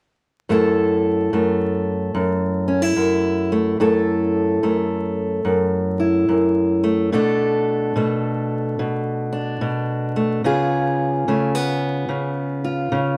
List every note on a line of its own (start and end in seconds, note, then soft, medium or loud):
0.49 1.32 F#2 medium
0.49 1.33 A3 soft
0.49 2.67 E4 soft
0.49 3.81 A4 medium
1.33 2.14 F#2 medium
1.33 3.52 A3 soft
2.15 2.95 F#2 medium
2.68 2.82 C#4 soft
2.82 3.80 E4 soft
2.96 3.79 F#2 medium
3.52 3.80 A3 medium
3.80 4.62 F#2 medium
3.80 4.63 A3 medium
3.80 5.98 E4 medium
3.80 7.10 A4 soft
4.63 5.43 F#2 medium
4.63 6.82 A3 soft
5.45 6.27 F#2 medium
6.00 7.09 E4 soft
6.28 7.12 F#2 medium
6.84 7.12 A3 soft
7.12 7.94 B2 medium
7.12 7.95 A3 soft
7.12 9.31 D4 medium
7.12 10.42 A4 medium
7.96 8.78 B2 medium
7.96 10.15 A3 soft
8.79 9.60 B2 medium
9.33 10.41 D4 soft
9.61 10.44 B2 medium
10.16 10.45 A3 soft
10.44 11.27 C#3 medium
10.44 11.28 B3 medium
10.44 12.63 F4 medium
10.44 13.17 G#4 medium
11.28 12.07 C#3 medium
11.28 11.55 A3 soft
11.55 13.17 B3 soft
12.09 12.91 C#3 medium
12.64 13.17 F4 soft
12.92 13.17 C#3 medium